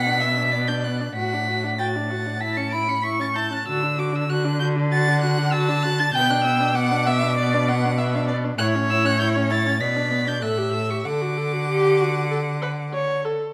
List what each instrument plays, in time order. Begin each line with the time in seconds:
Already playing: cello B2, violin F#5 B6
0.07 viola D4
0.20 viola B3, violin E5
0.37 viola D4
0.51 viola B3, violin D5
0.68 viola D4, violin G6
0.84 viola B3, violin F#6
1.01 viola D4
1.14 cello A2, viola F#4, violin F#5 B6
1.33 viola D4
1.48 viola F#4
1.64 viola D4
1.79 viola F#4, violin G5 A6
1.95 viola D4
2.09 viola F#4, violin F#5
2.26 viola D4
2.41 viola E4, violin A5 B6
2.57 viola C#4, violin C#7
2.71 viola E4, violin B5 D7
2.88 viola C#4, violin C#7
3.02 viola E4, violin C#6 B6
3.20 viola C#4, violin A6
3.34 viola E4, violin A5 G6
3.51 viola C#4, violin F#6
3.67 cello D3, viola F#4, violin E6
3.83 viola D4
3.98 viola F#4, violin D6
4.13 viola D4, violin E6
4.29 viola F#4, violin F#6
4.45 viola D4
4.60 viola F#4, violin G6
4.76 viola D4
4.91 viola F#4, violin F#5 A6
5.08 viola D4
5.21 viola F#4, violin F#6
5.38 viola D4
5.52 viola F#4, violin A5 E6
5.69 viola D4
5.83 viola F#4, violin F#6
5.99 viola D4, violin A6
6.14 cello B2, viola B3, violin G5 G6
6.30 viola D4, violin F#6
6.43 viola B3, violin E6
6.61 viola D4
6.74 viola B3, violin F#5 D6
6.92 viola D4
7.07 viola B3, violin E5
7.23 viola D4
7.37 viola B3, violin D5
7.54 viola D4
7.68 viola B3, violin F#5
7.85 viola D4
7.98 viola B3, violin E5
8.15 viola D4
8.28 viola B3, violin D5
8.44 viola D4
8.58 cello A2, viola E4, violin C#5 F#6
8.75 viola C#4
8.90 viola E4, violin E6
9.05 viola C#4, violin F#6
9.20 viola E4, violin G6
9.36 viola C#4
9.50 viola E4, violin A6
9.66 viola C#4
9.80 cello B2, viola B3, violin D5 B6
9.96 viola D4
10.11 viola B3
10.27 viola D4, violin G6
10.41 cello A2, viola A4, violin E5 F#6
10.58 viola G4
10.73 viola A4, violin E6
10.90 viola G4, violin C#6
11.05 cello D3, viola A4, violin F#5 D6
11.21 viola F#4
11.37 viola A4
11.52 viola F#4
11.68 viola G4
12.00 viola F#4
12.30 viola A4
12.62 viola B4
12.93 viola C#5
13.25 viola A4